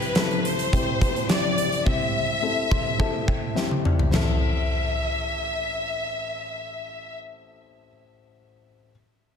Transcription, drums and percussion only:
0.02 closed hi-hat soft
0.15 snare medium
0.15 closed hi-hat medium
0.31 closed hi-hat soft
0.45 closed hi-hat medium
0.59 closed hi-hat soft
0.73 kick medium
0.73 closed hi-hat medium
1.01 kick medium
1.01 closed hi-hat medium
1.16 closed hi-hat soft
1.29 snare loud
1.29 closed hi-hat medium
1.58 closed hi-hat medium
1.72 closed hi-hat soft
1.86 kick medium
2.71 kick medium
3.00 kick medium
3.28 kick medium
3.56 snare soft
3.71 high tom soft
3.85 mid tom medium
3.99 floor tom medium
4.14 snare medium
4.14 floor tom medium
4.14 crash medium

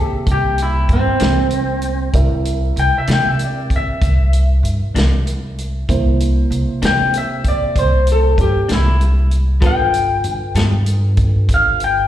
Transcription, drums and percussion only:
0.27 kick medium
0.27 closed hi-hat medium
0.58 closed hi-hat medium
0.89 kick medium
0.89 closed hi-hat medium
1.20 snare loud
1.20 closed hi-hat medium
1.50 closed hi-hat medium
1.82 closed hi-hat medium
2.13 kick medium
2.13 closed hi-hat medium
2.45 closed hi-hat medium
2.77 closed hi-hat medium
3.07 snare medium
3.07 closed hi-hat medium
3.39 closed hi-hat medium
3.70 kick medium
3.70 closed hi-hat soft
4.02 kick medium
4.02 closed hi-hat medium
4.33 closed hi-hat medium
4.65 closed hi-hat medium
4.96 snare loud
4.96 closed hi-hat medium
5.27 closed hi-hat medium
5.58 closed hi-hat medium
5.89 kick medium
5.89 closed hi-hat medium
6.20 closed hi-hat medium
6.52 closed hi-hat medium
6.82 snare loud
6.82 closed hi-hat medium
7.14 closed hi-hat medium
7.44 kick medium
7.44 closed hi-hat medium
7.76 kick medium
7.76 closed hi-hat medium
8.07 closed hi-hat medium
8.38 kick medium
8.38 closed hi-hat medium
8.69 snare loud
8.69 closed hi-hat medium
9.01 closed hi-hat medium
9.31 closed hi-hat soft
9.62 kick loud
9.62 closed hi-hat medium
9.94 closed hi-hat medium
10.24 closed hi-hat soft
10.55 snare loud
10.55 closed hi-hat medium
10.86 closed hi-hat medium
11.17 kick medium
11.17 closed hi-hat medium
11.49 kick medium
11.49 closed hi-hat medium
11.80 closed hi-hat medium

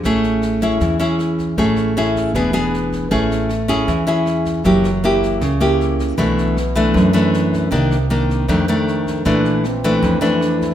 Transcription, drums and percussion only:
0.04 kick soft
0.04 cross-stick soft
0.04 snare soft
0.23 snare soft
0.42 cross-stick medium
0.42 snare soft
0.61 kick soft
0.61 snare soft
0.80 kick medium
0.80 snare soft
1.00 snare soft
1.19 cross-stick soft
1.19 snare soft
1.38 kick soft
1.38 snare soft
1.57 kick soft
1.57 snare soft
1.76 cross-stick medium
1.76 snare soft
1.96 snare soft
2.15 kick soft
2.15 snare soft
2.34 kick medium
2.34 cross-stick medium
2.34 snare soft
2.54 snare soft
2.73 snare soft
2.92 kick soft
2.92 snare soft
3.11 kick soft
3.11 cross-stick soft
3.11 snare soft
3.31 snare soft
3.49 cross-stick medium
3.49 snare soft
3.68 kick soft
3.68 snare soft
3.87 kick soft
3.87 snare soft
4.07 snare soft
4.26 cross-stick medium
4.26 snare soft
4.45 kick soft
4.45 snare soft
4.64 kick medium
4.64 snare soft
4.84 cross-stick medium
4.84 snare soft
5.03 snare soft
5.22 kick soft
5.22 snare soft
5.41 kick medium
5.41 cross-stick medium
5.41 snare soft
5.61 snare soft
5.80 snare soft
5.99 kick soft
5.99 snare soft
6.18 kick soft
6.18 cross-stick medium
6.18 snare soft
6.38 snare soft
6.57 cross-stick medium
6.57 snare soft
6.76 kick soft
6.76 snare soft
6.95 kick medium
6.95 snare soft
7.15 snare soft
7.34 cross-stick medium
7.34 snare soft
7.53 kick soft
7.53 snare soft
7.72 kick medium
7.72 snare soft
7.91 cross-stick medium
7.91 snare soft
8.11 snare soft
8.29 kick soft
8.29 snare soft
8.49 kick medium
8.49 cross-stick medium
8.49 snare soft
8.68 snare soft
8.88 snare soft
9.06 kick soft
9.06 snare soft
9.26 kick soft
9.26 cross-stick soft
9.26 snare soft
9.45 snare soft
9.64 cross-stick medium
9.64 snare soft
9.83 kick soft
9.83 snare soft
10.03 kick medium
10.03 snare soft
10.23 snare soft
10.41 cross-stick medium
10.41 snare soft
10.60 kick soft
10.60 snare soft

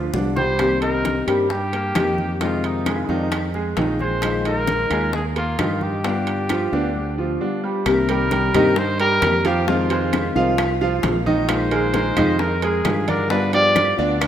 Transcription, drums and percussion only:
0.13 low bongo medium
0.13 high conga medium
0.13 low timbale medium
0.36 low bongo medium
0.36 high conga medium
0.36 low timbale medium
0.59 high bongo medium
0.59 high timbale medium
0.59 claves medium
0.82 high conga soft
0.82 high timbale medium
1.05 high bongo medium
1.05 high conga medium
1.05 high timbale medium
1.28 high conga soft
1.28 high timbale medium
1.28 claves medium
1.50 high bongo medium
1.50 high conga soft
1.73 high conga soft
1.73 high timbale medium
1.95 high bongo medium
1.95 low bongo medium
1.95 high conga medium
1.95 high timbale medium
1.95 claves medium
2.18 high conga medium
2.41 high bongo medium
2.41 high conga soft
2.41 high timbale medium
2.64 high conga soft
2.64 high timbale medium
2.86 high bongo medium
2.86 high conga medium
2.86 high timbale medium
2.86 claves medium
3.09 high bongo soft
3.09 high conga soft
3.32 high bongo medium
3.32 high conga soft
3.32 high timbale medium
3.32 claves medium
3.54 high bongo soft
3.54 high conga soft
3.77 high bongo medium
3.77 low bongo medium
3.77 high conga medium
3.77 high timbale medium
3.77 low timbale medium
3.99 high bongo soft
3.99 high conga medium
4.22 high bongo medium
4.22 high conga soft
4.22 high timbale medium
4.22 claves medium
4.45 high conga soft
4.45 high timbale medium
4.67 high bongo medium
4.67 high conga medium
4.67 high timbale medium
4.91 high conga soft
4.91 high timbale medium
4.91 claves medium
5.13 high bongo medium
5.13 high conga soft
5.36 high conga soft
5.36 high timbale medium
5.59 high bongo medium
5.59 low bongo medium
5.59 high conga medium
5.59 high timbale medium
5.59 low timbale medium
5.59 claves medium
5.81 high conga medium
6.04 high bongo medium
6.04 high timbale medium
6.27 high conga soft
6.27 high timbale medium
6.49 high bongo medium
6.49 high conga medium
6.49 high timbale medium
6.49 claves medium
6.73 high bongo soft
6.73 high conga soft
7.86 high bongo medium
7.86 high timbale medium
7.86 claves medium
8.09 high conga soft
8.09 high timbale medium
8.31 high bongo medium
8.31 high conga medium
8.31 high timbale medium
8.54 high conga soft
8.54 low conga medium
8.54 high timbale medium
8.54 claves medium
8.76 high bongo medium
8.76 high conga soft
9.00 high conga soft
9.00 high timbale medium
9.22 high bongo medium
9.22 low bongo medium
9.22 high conga medium
9.22 high timbale medium
9.22 claves medium
9.45 high conga medium
9.45 high timbale medium
9.68 high bongo medium
9.68 high conga soft
9.90 high bongo soft
9.90 high conga soft
9.90 high timbale medium
10.13 high bongo medium
10.13 high conga loud
10.13 high timbale medium
10.13 claves medium
10.36 high bongo soft
10.36 high conga soft
10.58 high bongo medium
10.58 high conga soft
10.58 high timbale medium
10.58 claves medium
10.81 high bongo soft
10.81 high conga soft
11.03 high bongo medium
11.03 low bongo medium
11.03 high conga medium
11.03 high timbale medium
11.03 low timbale medium
11.27 high conga medium
11.49 high bongo medium
11.49 high conga soft
11.49 high timbale loud
11.49 claves medium
11.71 high conga soft
11.71 high timbale medium
11.94 high bongo medium
11.94 high conga medium
11.94 high timbale medium
12.17 high conga soft
12.17 low conga medium
12.17 high timbale medium
12.17 claves medium
12.39 high bongo medium
12.39 high conga soft
12.62 high conga soft
12.62 high timbale medium
12.85 high bongo medium
12.85 low bongo medium
12.85 high conga medium
12.85 high timbale medium
12.85 low timbale medium
12.85 claves medium
13.08 high conga medium
13.08 high timbale medium
13.30 high bongo medium
13.30 high conga soft
13.53 high bongo soft
13.53 high conga soft
13.53 high timbale medium
13.76 high bongo medium
13.76 high conga loud
13.76 high timbale medium
13.76 claves medium
13.99 high bongo soft
13.99 high conga soft
14.21 high bongo medium
14.21 high conga soft
14.21 high timbale medium
14.21 claves medium

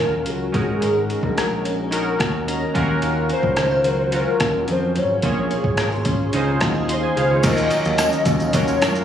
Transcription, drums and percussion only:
0.26 closed hi-hat medium
0.54 kick loud
0.54 closed hi-hat medium
0.82 closed hi-hat medium
1.10 closed hi-hat soft
1.23 kick medium
1.38 cross-stick medium
1.38 closed hi-hat medium
1.65 closed hi-hat medium
1.92 closed hi-hat medium
2.20 kick medium
2.20 cross-stick medium
2.20 closed hi-hat soft
2.48 closed hi-hat medium
2.75 kick loud
2.75 closed hi-hat medium
3.02 closed hi-hat medium
3.29 closed hi-hat soft
3.43 kick medium
3.56 cross-stick medium
3.56 closed hi-hat medium
3.84 closed hi-hat medium
4.12 closed hi-hat medium
4.40 kick medium
4.40 cross-stick medium
4.40 closed hi-hat soft
4.68 closed hi-hat medium
4.96 closed hi-hat medium
5.22 kick medium
5.22 closed hi-hat medium
5.51 closed hi-hat soft
5.64 kick medium
5.77 cross-stick medium
5.77 closed hi-hat medium
6.05 kick medium
6.05 closed hi-hat medium
6.33 closed hi-hat medium
6.61 kick medium
6.61 cross-stick medium
6.61 closed hi-hat soft
6.89 closed hi-hat medium
7.17 closed hi-hat medium
7.43 kick loud
7.43 closed hi-hat medium
7.43 crash medium
7.43 tambourine soft
7.43 shaker medium
7.57 shaker medium
7.71 closed hi-hat soft
7.71 tambourine soft
7.71 shaker soft
7.85 shaker medium
7.98 cross-stick medium
7.98 closed hi-hat medium
7.98 tambourine medium
7.98 shaker medium
8.12 shaker soft
8.25 kick loud
8.25 closed hi-hat medium
8.25 tambourine soft
8.25 shaker medium
8.40 tambourine soft
8.40 shaker soft
8.53 kick medium
8.53 closed hi-hat medium
8.53 tambourine soft
8.53 shaker medium
8.68 tambourine soft
8.68 shaker medium
8.82 cross-stick loud
8.82 closed hi-hat soft
8.82 tambourine medium
8.82 shaker medium
8.95 shaker medium

